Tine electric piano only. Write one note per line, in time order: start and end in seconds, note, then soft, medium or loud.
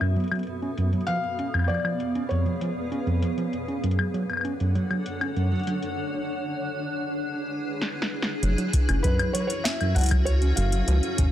0.01 0.14 F#2 medium
0.16 0.24 F#3 medium
0.32 0.39 F#3 medium
0.62 0.70 C#4 medium
0.78 0.90 F#2 medium
0.93 1.01 F#3 medium
1.08 1.16 F3 medium
1.39 1.46 C#4 medium
1.54 1.67 F2 medium
1.69 1.77 F3 medium
1.85 1.92 F3 medium
2.15 2.23 C#4 medium
2.31 2.43 F2 medium
2.46 2.54 F3 medium
2.61 2.69 F3 medium
2.92 2.99 C#4 medium
3.07 3.20 F2 medium
3.22 3.30 F3 medium
3.38 3.45 F3 medium
3.68 3.76 C#4 medium
3.84 3.96 F#2 medium
3.99 4.07 F#3 medium
4.14 4.22 F#3 medium
4.45 4.52 C#4 medium
4.60 4.73 F#2 medium
4.75 4.83 F#3 medium
4.91 4.98 F#3 medium
5.21 5.29 C#4 medium
5.37 5.49 F#2 medium
5.52 5.60 F#3 medium
5.67 5.75 F#3 medium
8.43 8.51 F#3 medium
8.58 8.66 F#3 medium
8.89 8.96 C#4 medium
9.04 9.17 F#2 loud
9.19 9.27 F#3 medium
9.35 9.42 F#3 medium
9.65 9.73 C#4 medium
9.81 9.93 F#2 loud
9.96 10.04 F#3 medium
10.11 10.19 F#3 medium
10.42 10.49 C#4 medium
10.57 10.70 F#2 loud
10.72 10.80 F#3 medium
10.88 10.95 F3 medium
11.18 11.26 C#4 medium